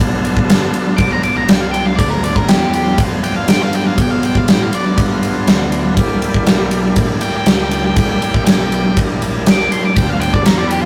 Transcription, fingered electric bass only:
0.00 B1
0.49 G1
0.74 muted fingered electric bass stroke
0.98 B1
1.49 C2
1.99 D2
2.48 E2
2.98 F2
3.48 G2
3.98 B2
4.49 A2
4.75 muted fingered electric bass stroke
4.98 G2
5.47 D2
5.97 C2
6.46 B1
6.97 A#1
7.22 muted fingered electric bass stroke
7.46 C#2
7.97 C2
8.22 muted fingered electric bass stroke
8.47 B1
8.97 A#1
9.48 C2
9.72 muted fingered electric bass stroke
9.97 D2
10.47 E2

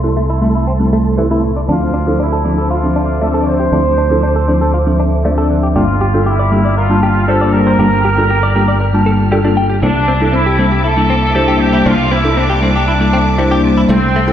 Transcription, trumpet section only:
1.70 F4
2.21 E4
2.72 F4
2.97 F4
3.22 A4
3.40 D5
3.47 C5
5.76 F4
6.27 E4
6.77 F4
7.02 F4
7.27 A4
7.53 A#4
9.84 D4
10.34 E4
10.85 A4
11.60 G4
11.86 F4
12.12 E4
12.38 D4
13.89 C4

